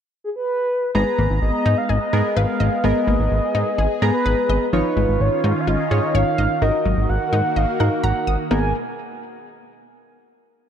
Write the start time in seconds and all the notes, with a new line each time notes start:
0.24 G#4
0.36 B4
0.95 G#1 G#3 B3 G#4 B4 A#5
1.18 G#1 A#3
1.30 G#1
1.42 G#1 D#5
1.66 G#2 D#4
1.78 F5
1.89 G#1 G#4 D#5
2.13 G#2 B3 G#4 A#4
2.37 G#1 B4 F5
2.60 G#1 D#5
2.84 G#1 G#3 B3 G#4 A#4 D#5
3.07 G#1 A#3
3.19 G#1
3.31 G#1
3.55 G#2 D#4
3.78 G#1 G#4
4.02 G#2 B3 G#4 A#4 A#5
4.14 B4
4.26 G#1 B4
4.49 G#1 D#5
4.73 G#1 D#3 F3 C#4 D#4 F4 B4 C#5
4.97 G#1 G#3
5.09 G#1
5.20 G#1 C#5
5.44 G#2 D#4
5.60 F5
5.67 G#1 F4 D#5
5.91 G#2 D#4 F4 G#4 C#5
6.15 G#1 C#5 F5
6.38 G#1 D#5
6.62 G#1 D#3 A#3 D#4 F#4 A#4 D#5
6.85 G#1 F#3
6.97 G#1
7.09 G#1 F#5
7.33 G#2 D#4
7.56 G#1 D#5 F5
7.80 G#2 D#4 F#4 A#4 F#5
8.04 G#1 F#5 A#5
8.27 G#1 D#6
8.51 G#1 B2 G#3 A#3 B3 D#4 G#4 A#4 G#5